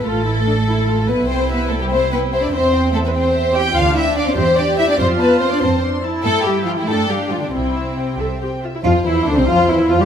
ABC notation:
X:1
M:6/8
L:1/16
Q:3/8=96
K:C
V:1 name="Violin section"
A8- A2 B2 | g2 e2 g2 e2 g2 e2 | e2 g2 e2 g2 e2 g2 | f2 g2 f2 e2 g2 e2 |
c'2 a2 c'2 a2 c'2 a2 | g2 e2 g2 g2 f2 g2 | g2 e2 g2 e2 g2 e2 | F2 E2 D C F2 E2 F G |]
V:2 name="Violin section"
A8- A2 B2 | c2 B2 A G c2 B2 c d | c4 A B c4 g2 | f2 e2 d c c2 d2 e d |
c2 B2 c d c2 z4 | A2 G2 F E A2 G2 F D | C8- C2 z2 | c12 |]
V:3 name="Viola section"
F2 E2 D2 E2 F2 E2- | E12 | C12 | D6 G6 |
F6 C2 D2 E2- | E6 D6 | E6 A2 G2 F E | F2 E2 D C F2 E2 F G |]
V:4 name="Cello section"
A,8- A,2 B,2 | C2 B,2 A, G, C2 B,2 C D | C4 A, B, C4 G2 | F2 E2 D C C2 D2 E D |
C2 B,2 C D C2 z4 | A,2 G,2 F, E, A,2 G,2 F, D, | C,8- C,2 z2 | F2 E2 D C F2 E2 F G |]
V:5 name="French horn section" clef=bass
z12 | z12 | z12 | z12 |
z12 | z12 | z12 | F,2 E,2 D, C, F,2 E,2 F, G, |]
V:6 name="Double bass section" clef=bass
A,,,8- A,,,2 B,,,2 | C,,12 | E,,12 | D,,6 E,,6 |
F,,6 F,,6 | G,,6 G,,6 | C,,6 C,,6 | F,,2 E,,2 D,, C,, F,,2 E,,2 F,, z |]